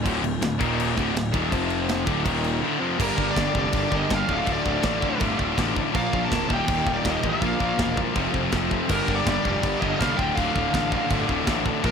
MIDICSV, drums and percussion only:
0, 0, Header, 1, 2, 480
1, 0, Start_track
1, 0, Tempo, 368550
1, 63, Time_signature, 4, 2, 24, 8
1, 15516, End_track
2, 0, Start_track
2, 0, Title_t, "Drums"
2, 74, Note_on_c, 9, 36, 103
2, 77, Note_on_c, 9, 49, 87
2, 204, Note_off_c, 9, 36, 0
2, 208, Note_off_c, 9, 49, 0
2, 311, Note_on_c, 9, 49, 62
2, 442, Note_off_c, 9, 49, 0
2, 546, Note_on_c, 9, 49, 76
2, 555, Note_on_c, 9, 38, 106
2, 676, Note_off_c, 9, 49, 0
2, 685, Note_off_c, 9, 38, 0
2, 791, Note_on_c, 9, 36, 109
2, 797, Note_on_c, 9, 49, 68
2, 921, Note_off_c, 9, 36, 0
2, 928, Note_off_c, 9, 49, 0
2, 1038, Note_on_c, 9, 49, 85
2, 1168, Note_off_c, 9, 49, 0
2, 1270, Note_on_c, 9, 36, 92
2, 1284, Note_on_c, 9, 49, 58
2, 1400, Note_off_c, 9, 36, 0
2, 1414, Note_off_c, 9, 49, 0
2, 1517, Note_on_c, 9, 49, 82
2, 1526, Note_on_c, 9, 38, 111
2, 1647, Note_off_c, 9, 49, 0
2, 1656, Note_off_c, 9, 38, 0
2, 1744, Note_on_c, 9, 36, 115
2, 1751, Note_on_c, 9, 49, 64
2, 1874, Note_off_c, 9, 36, 0
2, 1882, Note_off_c, 9, 49, 0
2, 1983, Note_on_c, 9, 36, 109
2, 1989, Note_on_c, 9, 49, 83
2, 2113, Note_off_c, 9, 36, 0
2, 2120, Note_off_c, 9, 49, 0
2, 2216, Note_on_c, 9, 49, 61
2, 2347, Note_off_c, 9, 49, 0
2, 2460, Note_on_c, 9, 49, 66
2, 2469, Note_on_c, 9, 38, 100
2, 2590, Note_off_c, 9, 49, 0
2, 2600, Note_off_c, 9, 38, 0
2, 2694, Note_on_c, 9, 49, 65
2, 2696, Note_on_c, 9, 36, 107
2, 2824, Note_off_c, 9, 49, 0
2, 2827, Note_off_c, 9, 36, 0
2, 2938, Note_on_c, 9, 36, 105
2, 2941, Note_on_c, 9, 49, 89
2, 3069, Note_off_c, 9, 36, 0
2, 3071, Note_off_c, 9, 49, 0
2, 3180, Note_on_c, 9, 49, 57
2, 3311, Note_off_c, 9, 49, 0
2, 3904, Note_on_c, 9, 36, 111
2, 3912, Note_on_c, 9, 52, 64
2, 3912, Note_on_c, 9, 57, 121
2, 4034, Note_off_c, 9, 36, 0
2, 4042, Note_off_c, 9, 52, 0
2, 4042, Note_off_c, 9, 57, 0
2, 4141, Note_on_c, 9, 36, 96
2, 4271, Note_off_c, 9, 36, 0
2, 4383, Note_on_c, 9, 36, 92
2, 4386, Note_on_c, 9, 52, 60
2, 4395, Note_on_c, 9, 38, 114
2, 4513, Note_off_c, 9, 36, 0
2, 4516, Note_off_c, 9, 52, 0
2, 4525, Note_off_c, 9, 38, 0
2, 4622, Note_on_c, 9, 36, 91
2, 4753, Note_off_c, 9, 36, 0
2, 4851, Note_on_c, 9, 52, 65
2, 4861, Note_on_c, 9, 36, 124
2, 4982, Note_off_c, 9, 52, 0
2, 4991, Note_off_c, 9, 36, 0
2, 5103, Note_on_c, 9, 36, 81
2, 5233, Note_off_c, 9, 36, 0
2, 5343, Note_on_c, 9, 52, 59
2, 5346, Note_on_c, 9, 36, 103
2, 5352, Note_on_c, 9, 38, 108
2, 5474, Note_off_c, 9, 52, 0
2, 5476, Note_off_c, 9, 36, 0
2, 5483, Note_off_c, 9, 38, 0
2, 5585, Note_on_c, 9, 36, 86
2, 5715, Note_off_c, 9, 36, 0
2, 5812, Note_on_c, 9, 52, 65
2, 5825, Note_on_c, 9, 36, 98
2, 5942, Note_off_c, 9, 52, 0
2, 5955, Note_off_c, 9, 36, 0
2, 6065, Note_on_c, 9, 36, 89
2, 6195, Note_off_c, 9, 36, 0
2, 6289, Note_on_c, 9, 52, 65
2, 6298, Note_on_c, 9, 38, 94
2, 6302, Note_on_c, 9, 36, 115
2, 6419, Note_off_c, 9, 52, 0
2, 6428, Note_off_c, 9, 38, 0
2, 6433, Note_off_c, 9, 36, 0
2, 6544, Note_on_c, 9, 36, 94
2, 6674, Note_off_c, 9, 36, 0
2, 6774, Note_on_c, 9, 52, 66
2, 6784, Note_on_c, 9, 36, 124
2, 6904, Note_off_c, 9, 52, 0
2, 6914, Note_off_c, 9, 36, 0
2, 7023, Note_on_c, 9, 36, 76
2, 7153, Note_off_c, 9, 36, 0
2, 7265, Note_on_c, 9, 36, 104
2, 7267, Note_on_c, 9, 52, 69
2, 7276, Note_on_c, 9, 38, 113
2, 7395, Note_off_c, 9, 36, 0
2, 7397, Note_off_c, 9, 52, 0
2, 7406, Note_off_c, 9, 38, 0
2, 7508, Note_on_c, 9, 36, 90
2, 7638, Note_off_c, 9, 36, 0
2, 7747, Note_on_c, 9, 36, 98
2, 7751, Note_on_c, 9, 52, 64
2, 7877, Note_off_c, 9, 36, 0
2, 7881, Note_off_c, 9, 52, 0
2, 7988, Note_on_c, 9, 36, 81
2, 8118, Note_off_c, 9, 36, 0
2, 8228, Note_on_c, 9, 36, 105
2, 8231, Note_on_c, 9, 52, 64
2, 8241, Note_on_c, 9, 38, 100
2, 8358, Note_off_c, 9, 36, 0
2, 8362, Note_off_c, 9, 52, 0
2, 8371, Note_off_c, 9, 38, 0
2, 8467, Note_on_c, 9, 36, 91
2, 8597, Note_off_c, 9, 36, 0
2, 8697, Note_on_c, 9, 52, 72
2, 8703, Note_on_c, 9, 36, 124
2, 8827, Note_off_c, 9, 52, 0
2, 8833, Note_off_c, 9, 36, 0
2, 8942, Note_on_c, 9, 36, 80
2, 9072, Note_off_c, 9, 36, 0
2, 9181, Note_on_c, 9, 52, 60
2, 9182, Note_on_c, 9, 36, 104
2, 9190, Note_on_c, 9, 38, 97
2, 9311, Note_off_c, 9, 52, 0
2, 9312, Note_off_c, 9, 36, 0
2, 9320, Note_off_c, 9, 38, 0
2, 9423, Note_on_c, 9, 36, 91
2, 9553, Note_off_c, 9, 36, 0
2, 9660, Note_on_c, 9, 52, 57
2, 9663, Note_on_c, 9, 36, 102
2, 9790, Note_off_c, 9, 52, 0
2, 9793, Note_off_c, 9, 36, 0
2, 9903, Note_on_c, 9, 36, 82
2, 10033, Note_off_c, 9, 36, 0
2, 10142, Note_on_c, 9, 52, 58
2, 10145, Note_on_c, 9, 36, 102
2, 10151, Note_on_c, 9, 38, 104
2, 10272, Note_off_c, 9, 52, 0
2, 10276, Note_off_c, 9, 36, 0
2, 10281, Note_off_c, 9, 38, 0
2, 10385, Note_on_c, 9, 36, 91
2, 10515, Note_off_c, 9, 36, 0
2, 10621, Note_on_c, 9, 52, 65
2, 10625, Note_on_c, 9, 36, 113
2, 10751, Note_off_c, 9, 52, 0
2, 10755, Note_off_c, 9, 36, 0
2, 10863, Note_on_c, 9, 36, 81
2, 10993, Note_off_c, 9, 36, 0
2, 11095, Note_on_c, 9, 52, 63
2, 11105, Note_on_c, 9, 38, 105
2, 11106, Note_on_c, 9, 36, 109
2, 11226, Note_off_c, 9, 52, 0
2, 11235, Note_off_c, 9, 38, 0
2, 11236, Note_off_c, 9, 36, 0
2, 11347, Note_on_c, 9, 36, 96
2, 11477, Note_off_c, 9, 36, 0
2, 11579, Note_on_c, 9, 49, 93
2, 11579, Note_on_c, 9, 52, 65
2, 11586, Note_on_c, 9, 36, 105
2, 11710, Note_off_c, 9, 49, 0
2, 11710, Note_off_c, 9, 52, 0
2, 11717, Note_off_c, 9, 36, 0
2, 11828, Note_on_c, 9, 36, 86
2, 11958, Note_off_c, 9, 36, 0
2, 12065, Note_on_c, 9, 52, 55
2, 12069, Note_on_c, 9, 36, 111
2, 12074, Note_on_c, 9, 38, 115
2, 12195, Note_off_c, 9, 52, 0
2, 12199, Note_off_c, 9, 36, 0
2, 12204, Note_off_c, 9, 38, 0
2, 12310, Note_on_c, 9, 36, 97
2, 12441, Note_off_c, 9, 36, 0
2, 12542, Note_on_c, 9, 52, 68
2, 12548, Note_on_c, 9, 36, 108
2, 12672, Note_off_c, 9, 52, 0
2, 12678, Note_off_c, 9, 36, 0
2, 12791, Note_on_c, 9, 36, 80
2, 12922, Note_off_c, 9, 36, 0
2, 13033, Note_on_c, 9, 36, 109
2, 13042, Note_on_c, 9, 52, 62
2, 13051, Note_on_c, 9, 38, 115
2, 13163, Note_off_c, 9, 36, 0
2, 13172, Note_off_c, 9, 52, 0
2, 13181, Note_off_c, 9, 38, 0
2, 13271, Note_on_c, 9, 36, 85
2, 13401, Note_off_c, 9, 36, 0
2, 13512, Note_on_c, 9, 36, 106
2, 13524, Note_on_c, 9, 52, 56
2, 13642, Note_off_c, 9, 36, 0
2, 13654, Note_off_c, 9, 52, 0
2, 13748, Note_on_c, 9, 36, 87
2, 13879, Note_off_c, 9, 36, 0
2, 13986, Note_on_c, 9, 36, 100
2, 13988, Note_on_c, 9, 52, 59
2, 13997, Note_on_c, 9, 38, 109
2, 14117, Note_off_c, 9, 36, 0
2, 14118, Note_off_c, 9, 52, 0
2, 14127, Note_off_c, 9, 38, 0
2, 14223, Note_on_c, 9, 36, 89
2, 14353, Note_off_c, 9, 36, 0
2, 14458, Note_on_c, 9, 52, 64
2, 14465, Note_on_c, 9, 36, 112
2, 14588, Note_off_c, 9, 52, 0
2, 14595, Note_off_c, 9, 36, 0
2, 14705, Note_on_c, 9, 36, 80
2, 14835, Note_off_c, 9, 36, 0
2, 14937, Note_on_c, 9, 52, 64
2, 14942, Note_on_c, 9, 36, 117
2, 14946, Note_on_c, 9, 38, 107
2, 15068, Note_off_c, 9, 52, 0
2, 15072, Note_off_c, 9, 36, 0
2, 15077, Note_off_c, 9, 38, 0
2, 15181, Note_on_c, 9, 36, 91
2, 15312, Note_off_c, 9, 36, 0
2, 15416, Note_on_c, 9, 52, 61
2, 15421, Note_on_c, 9, 36, 112
2, 15516, Note_off_c, 9, 36, 0
2, 15516, Note_off_c, 9, 52, 0
2, 15516, End_track
0, 0, End_of_file